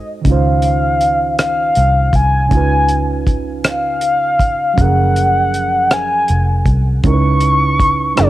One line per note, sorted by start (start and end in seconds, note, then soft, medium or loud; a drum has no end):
0.00 0.21 G#1 loud
0.00 0.19 G#3 medium
0.00 0.20 D#4 soft
0.00 0.21 F#4 medium
0.00 0.22 A4 soft
0.00 0.27 C5 medium
0.22 2.45 D#3 medium
0.22 2.47 C#4 medium
0.22 kick loud
0.22 closed hi-hat medium
0.26 1.72 C#2 medium
0.26 2.48 D#4 medium
0.26 2.49 F4 medium
0.26 1.35 F5 medium
0.32 2.51 C5 medium
0.62 closed hi-hat soft
1.01 closed hi-hat soft
1.39 2.17 F5 medium
1.39 cross-stick medium
1.39 closed hi-hat medium
1.75 2.10 C2 medium
1.75 closed hi-hat soft
2.13 2.47 C2 medium
2.13 2.52 G#5 loud
2.13 kick medium
2.13 closed hi-hat soft
2.47 4.71 C#3 medium
2.47 4.72 C#4 medium
2.51 4.80 C#2 medium
2.51 4.74 D#4 medium
2.51 4.75 F4 medium
2.51 3.23 G#5 medium
2.51 kick loud
2.51 closed hi-hat soft
2.57 4.76 B4 medium
2.88 closed hi-hat soft
3.27 kick medium
3.27 closed hi-hat soft
3.64 4.83 F5 loud
3.64 cross-stick loud
3.64 closed hi-hat medium
4.01 closed hi-hat soft
4.39 kick medium
4.39 closed hi-hat soft
4.74 6.98 F#3 medium
4.74 6.99 C#4 soft
4.74 kick loud
4.78 6.25 F#1 medium
4.78 7.00 F3 medium
4.78 7.02 G#4 soft
4.78 5.95 F#5 loud
4.78 closed hi-hat medium
4.84 7.03 A#4 medium
5.16 closed hi-hat soft
5.54 closed hi-hat soft
5.91 6.67 G#5 loud
5.91 cross-stick loud
5.91 closed hi-hat medium
6.28 6.63 F1 medium
6.28 closed hi-hat soft
6.66 7.00 C2 medium
6.66 kick medium
6.66 closed hi-hat soft
7.03 8.13 C#2 medium
7.03 8.16 C#3 medium
7.03 8.15 C#4 medium
7.03 8.16 D#4 medium
7.03 8.17 E4 medium
7.03 8.19 C#6 loud
7.03 kick loud
7.03 closed hi-hat soft
7.07 7.12 A#4 medium
7.14 8.22 B4 medium
7.40 closed hi-hat soft
7.80 kick medium
7.80 closed hi-hat soft
8.16 8.30 F#1 medium
8.16 8.30 F#3 medium
8.16 8.30 C#4 medium
8.16 8.30 D#4 medium
8.16 8.30 E4 medium
8.16 8.30 C#5 medium
8.16 cross-stick loud
8.16 closed hi-hat medium
8.20 8.30 G#4 medium
8.20 8.30 A#4 medium